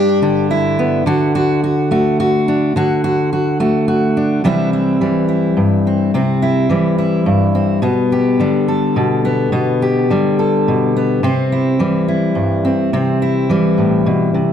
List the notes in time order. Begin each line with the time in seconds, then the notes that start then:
Already playing: G2 G3 D4 G4
0.22 D3 D4
0.51 E4
0.79 B3
1.06 D3 F#4
1.35 F#4
1.64 F#4
1.91 A3 F#4
2.20 F#4
2.48 D4
2.76 D3 F#4
3.04 F#4
3.33 F#4
3.60 A3 F#4
3.88 F#4
4.17 D4
4.44 C3 E3 G3 C4 E4
4.73 E4
5.01 E3 G3
5.29 E4
5.57 G2
5.87 C4
6.14 C3 C4
6.42 E4
6.69 E3 G3
6.98 E4
7.26 G2
7.55 C4
7.82 B2 B3
8.12 G4
8.40 D3 G3
8.68 A4
8.96 B2
9.25 B3
9.52 B2 B3
9.82 G4
10.10 D3 G3
10.39 A4
10.68 B2
10.96 B3
11.23 C3 C4
11.52 E4
11.79 E3 G3
12.08 E4
12.35 G2
12.65 C4
12.93 C3 C4
13.22 E4
13.50 E3 G3
13.78 A2
14.06 B2
14.34 C3